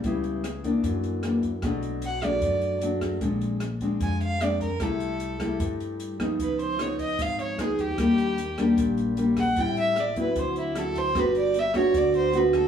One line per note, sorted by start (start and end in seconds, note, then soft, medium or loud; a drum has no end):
0.04 0.79 C#2 medium
0.04 0.82 C#3 medium
0.04 0.44 G3 medium
0.04 0.44 B3 medium
0.04 0.44 E4 medium
0.04 kick medium
0.04 closed hi-hat soft
0.24 closed hi-hat soft
0.44 cross-stick medium
0.44 closed hi-hat soft
0.64 1.20 E3 medium
0.64 1.21 A#3 medium
0.64 1.21 D4 medium
0.64 kick soft
0.64 closed hi-hat soft
0.83 1.59 F#2 medium
0.83 1.62 F#2 soft
0.83 kick medium
0.83 closed hi-hat soft
1.03 closed hi-hat soft
1.23 1.49 E3 medium
1.23 1.50 A#3 medium
1.23 1.50 D4 medium
1.23 cross-stick medium
1.23 closed hi-hat soft
1.43 kick soft
1.43 closed hi-hat soft
1.62 2.38 B1 medium
1.62 2.41 B2 medium
1.62 2.03 F#3 medium
1.62 2.03 A3 soft
1.62 2.03 D4 medium
1.62 kick medium
1.62 cross-stick medium
1.62 closed hi-hat soft
1.82 closed hi-hat soft
2.02 2.25 F#5 medium
2.02 closed hi-hat soft
2.22 2.79 F#3 medium
2.22 2.80 A3 medium
2.22 2.80 D4 medium
2.22 2.83 D5 medium
2.22 kick soft
2.22 cross-stick medium
2.22 closed hi-hat soft
2.41 3.17 F#2 medium
2.41 3.20 F#2 medium
2.41 kick medium
2.41 closed hi-hat soft
2.61 closed hi-hat soft
2.81 3.19 F#3 soft
2.81 3.19 A3 soft
2.81 3.19 D4 medium
2.81 closed hi-hat soft
3.01 kick soft
3.01 cross-stick medium
3.01 closed hi-hat soft
3.21 3.97 A#1 medium
3.21 3.99 A#2 soft
3.21 3.61 G#3 medium
3.21 3.62 C4 medium
3.21 3.62 D4 medium
3.21 kick medium
3.21 closed hi-hat soft
3.41 closed hi-hat soft
3.60 cross-stick medium
3.60 closed hi-hat soft
3.81 4.38 G#3 medium
3.81 4.38 C4 medium
3.81 4.38 D4 medium
3.81 kick soft
3.81 closed hi-hat soft
4.00 4.76 F2 medium
4.00 4.79 F3 soft
4.00 4.21 G#5 medium
4.00 kick medium
4.00 closed hi-hat soft
4.21 4.44 F5 medium
4.21 closed hi-hat soft
4.41 4.67 G#3 soft
4.41 4.67 C4 medium
4.41 4.67 D4 medium
4.41 4.61 D5 medium
4.41 cross-stick medium
4.41 closed hi-hat soft
4.60 4.84 A#4 medium
4.60 kick soft
4.60 closed hi-hat soft
4.80 5.56 C2 medium
4.80 5.58 C3 medium
4.80 5.37 G3 medium
4.80 5.37 A3 medium
4.80 5.38 E4 medium
4.80 5.61 A4 medium
4.80 kick medium
4.80 cross-stick medium
4.80 closed hi-hat soft
5.00 closed hi-hat soft
5.20 closed hi-hat soft
5.40 6.16 G3 medium
5.40 6.17 A3 medium
5.40 6.17 E4 medium
5.40 kick soft
5.40 cross-stick medium
5.40 closed hi-hat soft
5.60 6.35 G2 medium
5.60 6.37 G2 soft
5.60 kick medium
5.60 closed hi-hat soft
5.80 closed hi-hat soft
6.00 closed hi-hat soft
6.20 6.76 F3 medium
6.20 6.76 B3 medium
6.20 6.76 D#4 medium
6.20 kick soft
6.20 cross-stick medium
6.20 closed hi-hat soft
6.39 7.15 C#2 medium
6.39 7.17 C#3 medium
6.39 6.59 B4 medium
6.39 kick medium
6.39 closed hi-hat soft
6.59 6.83 C5 medium
6.59 closed hi-hat soft
6.79 7.55 F3 medium
6.79 7.56 B3 medium
6.79 7.56 D#4 medium
6.79 7.00 C#5 medium
6.79 cross-stick medium
6.79 closed hi-hat soft
6.99 7.23 D#5 medium
6.99 kick soft
6.99 closed hi-hat soft
7.19 7.56 G#1 medium
7.19 7.96 G#2 medium
7.19 7.40 F5 medium
7.19 kick medium
7.19 closed hi-hat soft
7.39 7.63 C#5 medium
7.39 closed hi-hat soft
7.58 7.76 C#2 medium
7.58 7.95 F3 medium
7.58 7.95 B3 medium
7.58 7.95 D#4 medium
7.58 7.82 G#4 medium
7.58 cross-stick medium
7.58 closed hi-hat soft
7.78 7.96 D#2 medium
7.78 8.79 G4 medium
7.78 kick soft
7.78 closed hi-hat soft
7.98 8.73 D#2 medium
7.98 8.75 D#3 medium
7.98 8.37 G3 medium
7.98 8.38 A#3 medium
7.98 8.38 D4 medium
7.98 kick medium
7.98 cross-stick medium
7.98 closed hi-hat soft
8.18 closed hi-hat soft
8.38 closed hi-hat soft
8.58 9.14 G3 medium
8.58 9.14 A#3 medium
8.58 9.14 D4 medium
8.58 kick soft
8.58 cross-stick medium
8.58 closed hi-hat soft
8.77 9.52 A#1 medium
8.77 9.55 A#2 soft
8.77 kick medium
8.77 closed hi-hat soft
8.97 closed hi-hat soft
9.17 9.43 G3 medium
9.17 9.43 A#3 medium
9.17 9.43 D4 medium
9.17 closed hi-hat soft
9.37 9.62 F#5 medium
9.37 kick soft
9.37 cross-stick medium
9.37 closed hi-hat soft
9.56 10.32 A1 medium
9.56 10.34 A2 medium
9.56 9.96 G3 medium
9.56 9.97 C4 medium
9.56 9.97 E4 medium
9.56 9.78 G5 medium
9.56 kick medium
9.56 closed hi-hat soft
9.77 10.01 E5 medium
9.77 closed hi-hat soft
9.96 10.18 D5 medium
9.96 cross-stick medium
9.96 closed hi-hat soft
10.16 10.72 F#3 medium
10.16 10.73 C4 medium
10.16 10.73 E4 medium
10.16 10.41 B4 medium
10.16 kick soft
10.16 closed hi-hat soft
10.36 11.11 D2 medium
10.36 11.14 D3 medium
10.36 10.57 C5 medium
10.36 kick medium
10.36 closed hi-hat soft
10.56 10.80 E4 medium
10.56 closed hi-hat soft
10.75 11.12 F#3 medium
10.75 11.12 C4 medium
10.75 11.13 E4 medium
10.75 11.00 A4 medium
10.75 cross-stick medium
10.75 closed hi-hat soft
10.95 11.21 C5 loud
10.95 kick soft
10.95 closed hi-hat soft
11.15 11.90 G1 medium
11.15 11.93 G3 medium
11.15 11.55 B3 medium
11.15 11.55 D4 medium
11.15 11.55 F#4 medium
11.15 kick medium
11.15 cross-stick medium
11.15 closed hi-hat soft
11.19 11.37 B4 medium
11.35 11.60 D5 medium
11.35 closed hi-hat soft
11.54 closed hi-hat soft
11.59 11.76 E5 medium
11.74 12.31 B3 medium
11.74 12.31 D4 medium
11.74 12.31 F#4 medium
11.74 11.99 C#5 medium
11.74 kick soft
11.74 cross-stick medium
11.74 closed hi-hat soft
11.94 12.68 D2 medium
11.94 12.68 D3 soft
11.94 12.16 D5 medium
11.94 kick medium
11.94 closed hi-hat soft
12.14 12.39 C5 loud
12.14 closed hi-hat soft
12.33 12.68 B3 medium
12.33 12.68 D4 soft
12.33 12.68 F#4 medium
12.33 closed hi-hat soft
12.37 12.56 B4 medium
12.53 12.68 A4 medium
12.53 kick soft
12.53 cross-stick medium
12.53 closed hi-hat soft